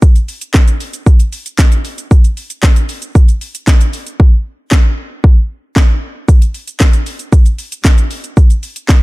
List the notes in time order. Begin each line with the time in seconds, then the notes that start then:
0.02 kick, shaker
0.16 closed hi-hat, shaker
0.28 open hi-hat, shaker
0.41 closed hi-hat, shaker
0.54 kick, snare, clap, shaker
0.68 closed hi-hat, shaker
0.80 open hi-hat, shaker
0.93 closed hi-hat, shaker
1.06 kick, shaker
1.20 closed hi-hat, shaker
1.33 open hi-hat, shaker
1.46 closed hi-hat, shaker
1.59 kick, snare, clap, shaker
1.72 closed hi-hat, shaker
1.85 open hi-hat, shaker
1.98 closed hi-hat, shaker
2.11 kick, shaker
2.24 closed hi-hat, shaker
2.37 open hi-hat, shaker
2.50 closed hi-hat, shaker
2.63 kick, snare, clap, shaker
2.76 closed hi-hat, shaker
2.89 open hi-hat, shaker
3.02 closed hi-hat, shaker
3.15 kick, shaker
3.28 closed hi-hat, shaker
3.41 open hi-hat, shaker
3.55 closed hi-hat, shaker
3.67 kick, snare, clap, shaker
3.81 closed hi-hat, shaker
3.93 open hi-hat, shaker
4.07 closed hi-hat, shaker
4.20 kick
4.71 kick, snare, clap
5.24 kick
5.76 kick, snare, clap
6.28 kick, shaker
6.42 closed hi-hat, shaker
6.54 open hi-hat, shaker
6.67 closed hi-hat, shaker
6.80 kick, snare, clap, shaker
6.93 closed hi-hat, shaker
7.06 open hi-hat, shaker
7.19 closed hi-hat, shaker
7.32 kick, shaker
7.46 closed hi-hat, shaker
7.59 open hi-hat, shaker
7.72 closed hi-hat, shaker
7.85 kick, snare, clap, shaker
7.98 closed hi-hat, shaker
8.11 open hi-hat, shaker
8.24 closed hi-hat, shaker
8.37 kick, shaker
8.50 closed hi-hat, shaker
8.63 open hi-hat, shaker
8.76 closed hi-hat, shaker
8.89 kick, snare, clap, shaker